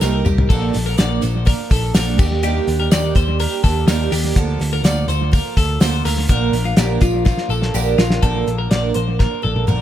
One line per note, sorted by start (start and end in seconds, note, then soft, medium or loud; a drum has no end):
0.01 0.22 C2 loud
0.01 0.26 C3 medium
0.01 0.26 G3 medium
0.01 0.26 A#3 loud
0.01 0.25 D#4 loud
0.01 0.26 A#4 medium
0.01 0.24 A#4 loud
0.01 snare medium
0.01 tambourine loud
0.25 0.46 C2 loud
0.25 0.50 A#3 soft
0.25 0.50 D#4 soft
0.25 0.50 G4 medium
0.25 0.50 A#4 medium
0.25 mid tom loud
0.25 tambourine medium
0.38 floor tom loud
0.49 0.70 A#1 loud
0.49 0.74 A#2 medium
0.49 0.74 D3 medium
0.49 0.74 F3 medium
0.49 0.74 A#3 loud
0.49 0.73 D4 loud
0.49 0.84 A4 medium
0.49 0.72 A4 loud
0.49 kick loud
0.49 tambourine soft
0.49 crash medium
0.73 0.95 A#1 medium
0.73 0.96 F3 soft
0.73 0.97 A#3 soft
0.73 0.97 D4 soft
0.73 0.98 A4 medium
0.73 snare soft
0.73 hi-hat pedal medium
0.73 open hi-hat medium
0.73 tambourine soft
0.86 0.98 A#4 medium
0.98 1.19 A#1 medium
0.98 1.22 A#2 medium
0.98 1.22 D3 medium
0.98 1.22 F3 medium
0.98 1.22 A#3 medium
0.98 1.21 D4 medium
0.98 1.20 A4 loud
0.98 1.23 D5 medium
0.98 snare loud
0.98 hi-hat pedal medium
0.98 open hi-hat medium
0.98 tambourine medium
1.21 1.53 A#1 medium
1.21 1.44 F3 soft
1.21 1.45 A#3 soft
1.21 1.46 D4 medium
1.21 1.46 A4 medium
1.21 1.46 C5 medium
1.21 hi-hat pedal medium
1.21 open hi-hat medium
1.21 tambourine medium
1.45 1.70 F3 medium
1.45 1.70 A#3 medium
1.45 1.70 D4 medium
1.45 1.69 A4 medium
1.45 1.71 A#4 medium
1.45 kick loud
1.45 hi-hat pedal medium
1.45 open hi-hat medium
1.45 tambourine soft
1.70 1.91 A#1 medium
1.70 1.93 F3 soft
1.70 1.94 A#3 soft
1.70 1.94 D4 soft
1.70 1.94 A4 medium
1.70 1.95 A4 medium
1.70 kick medium
1.70 hi-hat pedal medium
1.70 open hi-hat medium
1.70 tambourine medium
1.94 2.19 A#1 loud
1.94 2.19 A#2 medium
1.94 2.19 D3 loud
1.94 2.19 F3 loud
1.94 2.19 A#3 loud
1.94 2.18 D4 loud
1.94 2.17 A4 loud
1.94 2.19 A#4 medium
1.94 snare loud
1.94 hi-hat pedal medium
1.94 open hi-hat loud
1.94 tambourine medium
2.18 2.59 D#2 loud
2.18 2.43 A#3 soft
2.18 2.43 D4 medium
2.18 2.43 G4 medium
2.18 2.42 G4 medium
2.18 kick loud
2.18 tambourine medium
2.18 crash medium
2.43 2.67 D#3 loud
2.43 2.67 G3 medium
2.43 2.68 A#3 medium
2.43 2.67 D4 loud
2.43 2.77 G4 loud
2.43 2.66 G4 loud
2.43 hi-hat pedal medium
2.43 open hi-hat medium
2.43 tambourine soft
2.67 2.87 D#2 medium
2.67 2.91 A#3 soft
2.67 2.91 D4 medium
2.67 2.91 G4 medium
2.67 hi-hat pedal medium
2.67 open hi-hat medium
2.80 2.91 A#4 medium
2.91 3.12 D#2 medium
2.91 3.16 D#3 medium
2.91 3.16 G3 medium
2.91 3.16 A#3 loud
2.91 3.16 D4 loud
2.91 3.14 G4 loud
2.91 3.16 D5 medium
2.91 snare loud
2.91 hi-hat pedal medium
2.91 open hi-hat medium
2.91 tambourine medium
3.15 3.45 D#2 loud
3.15 3.40 A#3 medium
3.15 3.40 D4 medium
3.15 3.39 G4 medium
3.15 3.40 C5 medium
3.15 kick loud
3.15 hi-hat pedal medium
3.15 open hi-hat medium
3.15 tambourine medium
3.39 3.64 G3 medium
3.39 3.64 A#3 medium
3.39 3.63 D4 medium
3.39 3.61 G4 medium
3.39 3.63 A#4 medium
3.39 hi-hat pedal medium
3.39 open hi-hat medium
3.39 tambourine soft
3.62 3.84 D#2 loud
3.62 3.88 A#3 medium
3.62 3.88 D4 soft
3.62 3.87 G4 medium
3.62 3.87 A4 medium
3.62 kick medium
3.62 hi-hat pedal medium
3.62 open hi-hat medium
3.62 tambourine medium
3.87 4.07 D#2 loud
3.87 4.12 D#3 loud
3.87 4.12 G3 medium
3.87 4.13 A#3 loud
3.87 4.12 D4 loud
3.87 4.10 G4 loud
3.87 4.12 A#4 medium
3.87 snare loud
3.87 hi-hat pedal medium
3.87 open hi-hat loud
3.87 tambourine medium
4.12 4.32 D#2 medium
4.12 4.36 A#3 medium
4.12 4.37 D4 medium
4.12 4.36 G4 medium
4.12 4.37 G4 medium
4.12 hi-hat pedal medium
4.12 open hi-hat medium
4.12 tambourine medium
4.36 4.56 D2 loud
4.36 4.60 D3 medium
4.36 4.61 F3 loud
4.36 4.61 A#3 medium
4.36 4.60 F4 loud
4.36 4.71 A4 medium
4.36 4.58 A4 loud
4.36 kick loud
4.36 hi-hat pedal medium
4.36 open hi-hat medium
4.36 tambourine soft
4.59 4.80 D2 medium
4.59 4.84 A#3 soft
4.59 4.84 F4 medium
4.59 4.84 A4 medium
4.59 snare soft
4.59 hi-hat pedal medium
4.59 open hi-hat medium
4.59 tambourine soft
4.73 4.84 A#4 medium
4.83 5.04 D2 loud
4.83 5.08 D3 medium
4.83 5.09 F3 medium
4.83 5.09 A#3 medium
4.83 5.09 F4 medium
4.83 5.08 A4 medium
4.83 5.08 D5 medium
4.83 snare loud
4.83 hi-hat pedal medium
4.83 open hi-hat medium
4.83 tambourine medium
5.08 5.38 D2 loud
5.08 5.32 A#3 soft
5.08 5.32 F4 medium
5.08 5.33 A4 medium
5.08 5.33 C5 medium
5.08 hi-hat pedal medium
5.08 open hi-hat medium
5.08 tambourine medium
5.31 5.56 F3 medium
5.31 5.57 A#3 medium
5.31 5.56 F4 medium
5.31 5.55 A4 medium
5.31 5.57 A#4 medium
5.31 kick loud
5.31 hi-hat pedal medium
5.31 open hi-hat loud
5.31 tambourine soft
5.56 5.77 D2 loud
5.56 5.80 A#3 medium
5.56 5.81 F4 medium
5.56 5.81 A4 medium
5.56 kick medium
5.56 hi-hat pedal medium
5.56 open hi-hat medium
5.56 tambourine soft
5.80 6.01 D2 loud
5.80 6.05 D3 loud
5.80 6.05 F3 loud
5.80 6.05 A#3 loud
5.80 6.05 F4 loud
5.80 6.04 A4 loud
5.80 6.05 C5 medium
5.80 snare loud
5.80 hi-hat pedal medium
5.80 open hi-hat medium
5.80 tambourine loud
6.05 6.25 D2 loud
6.05 6.28 A#3 medium
6.05 6.29 F4 soft
6.05 6.29 A4 medium
6.05 6.29 A#4 medium
6.05 hi-hat pedal medium
6.05 open hi-hat medium
6.05 tambourine medium
6.28 6.49 A#1 loud
6.28 6.53 A#2 medium
6.28 6.53 D3 medium
6.28 6.53 F3 loud
6.28 6.53 A#3 loud
6.28 6.53 D4 loud
6.28 6.64 A#4 medium
6.28 6.52 A#4 loud
6.28 kick loud
6.28 hi-hat pedal medium
6.28 open hi-hat loud
6.28 tambourine soft
6.52 6.73 A#1 loud
6.52 6.77 A#3 soft
6.52 6.77 D4 medium
6.52 6.77 A#4 medium
6.52 hi-hat pedal medium
6.52 open hi-hat medium
6.52 tambourine soft
6.65 6.77 F4 medium
6.77 6.97 A#1 medium
6.77 7.02 A#2 loud
6.77 7.01 D3 medium
6.77 7.01 F3 medium
6.77 7.01 A#3 loud
6.77 7.00 D4 medium
6.77 7.01 G4 medium
6.77 6.99 A#4 medium
6.77 snare loud
6.77 hi-hat pedal medium
6.77 open hi-hat medium
6.77 tambourine medium
7.00 7.31 A#1 loud
7.00 7.24 F3 soft
7.00 7.24 A#3 soft
7.00 7.25 D4 medium
7.00 7.24 F4 medium
7.00 7.25 A#4 medium
7.00 kick medium
7.00 hi-hat pedal medium
7.00 open hi-hat medium
7.00 tambourine medium
7.25 7.50 F3 medium
7.25 7.50 A#3 medium
7.25 7.49 D4 medium
7.25 7.50 F4 medium
7.25 7.48 A#4 medium
7.25 kick medium
7.25 snare medium
7.25 tambourine soft
7.38 snare medium
7.49 7.69 A#1 medium
7.49 7.74 F3 medium
7.49 7.74 A#3 medium
7.49 7.74 D4 medium
7.49 7.74 A4 medium
7.49 7.74 A#4 medium
7.49 tambourine soft
7.62 snare medium
7.74 7.94 A#1 loud
7.74 7.98 A#2 medium
7.74 7.98 D3 loud
7.74 7.99 F3 loud
7.74 7.98 A#3 loud
7.74 7.97 D4 loud
7.74 7.98 G4 medium
7.74 7.97 A#4 loud
7.74 tambourine loud
7.98 8.18 A#1 medium
7.98 8.22 F3 soft
7.98 8.22 A#3 medium
7.98 8.22 D4 medium
7.98 8.22 F4 medium
7.98 8.22 A#4 medium
7.98 snare loud
7.98 tambourine medium
8.10 snare loud
8.22 8.42 A#1 loud
8.22 8.47 A#2 medium
8.22 8.47 D3 medium
8.22 8.47 F3 medium
8.22 8.47 A#3 medium
8.22 8.47 D4 medium
8.22 8.57 A4 medium
8.22 8.45 A#4 loud
8.22 kick loud
8.22 closed hi-hat medium
8.47 8.67 A#1 medium
8.47 8.71 F3 soft
8.47 8.71 A#3 medium
8.47 8.71 D4 soft
8.47 8.71 A#4 medium
8.47 closed hi-hat medium
8.58 8.70 A#4 medium
8.71 8.91 A#1 medium
8.71 8.95 A#2 medium
8.71 8.95 D3 medium
8.71 8.96 F3 medium
8.71 8.96 A#3 medium
8.71 8.94 D4 medium
8.71 8.94 A#4 medium
8.71 8.95 D5 medium
8.71 snare loud
8.71 closed hi-hat medium
8.94 9.25 A#1 medium
8.94 9.18 F3 soft
8.94 9.19 A#3 soft
8.94 9.19 D4 medium
8.94 9.19 A#4 medium
8.94 9.19 C5 medium
8.94 closed hi-hat medium
9.19 9.44 F3 medium
9.19 9.43 A#3 medium
9.19 9.42 D4 medium
9.19 9.43 A#4 medium
9.19 9.41 A#4 medium
9.19 kick medium
9.19 snare medium
9.42 9.64 A#1 medium
9.42 9.67 F3 soft
9.42 9.67 A#3 soft
9.42 9.67 D4 soft
9.42 9.68 A4 medium
9.42 9.67 A#4 medium
9.42 high tom medium
9.56 high tom medium
9.67 9.81 A#1 medium
9.67 9.81 A#2 medium
9.67 9.81 D3 medium
9.67 9.81 F3 medium
9.67 9.81 A#3 medium
9.67 9.81 D4 medium
9.67 9.81 A#4 medium
9.67 mid tom medium